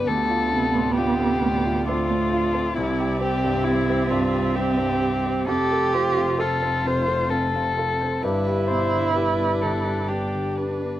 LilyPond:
<<
  \new Staff \with { instrumentName = "Harp" } { \time 3/4 \key c \major \tempo 4 = 66 <d' d''>8 a'16 c'''16 d'16 a'16 f'16 f'16 d'16 c''16 c''16 a'16 | c'8 g'16 c''16 c'16 g'16 e''16 e'16 c'16 c''16 c''16 g'16 | f'8 c''16 f''16 f'16 c''16 a'16 a'16 f'16 f''16 f''16 c''16 | g'8 d''16 g''16 g'16 d''16 b'16 b'16 g'16 g''16 g''16 d''16 | }
  \new Staff \with { instrumentName = "Violin" } { \time 3/4 \key c \major a'4 g'4 f'4 | e'8 g'8 e'8 f'8 g'4 | a'8 f'8 a'8 c''8 a'4 | b'8 c''8 b'8 a'8 g'8 b'8 | }
  \new Staff \with { instrumentName = "String section" } { \time 3/4 \key c \major << { d''2.~ | d''2. | c''2. | d''2. | } \\ { <a f'>2. | <g e''>2. | <a f'>2. | <g d'>2. | } >> }
  \new Staff \with { instrumentName = "Cello" } { \time 3/4 \key c \major b2 a4 | c'2. | g'4 f'4. r8 | e'2 d'4 | }
  \new Staff \with { instrumentName = "Grand piano" } { \time 3/4 \key c \major d,16 f'16 c16 a,16 f'16 c16 a,16 f'16 c'16 a,16 f'16 c'16 | c,16 g'16 c'16 g,16 g'16 c'16 g,16 g'16 c'16 g,16 g'16 c'16 | f,16 a'16 c'16 c16 a'16 c'16 c16 a'16 c'16 c16 a'16 c'16 | g,16 g'16 b,16 d16 g'16 b16 d16 g'16 b16 d16 g'16 b16 | }
  \new Staff \with { instrumentName = "Double bass" } { \clef bass \time 3/4 \key c \major d,2. | c,2. | f,,2. | g,,2. | }
>>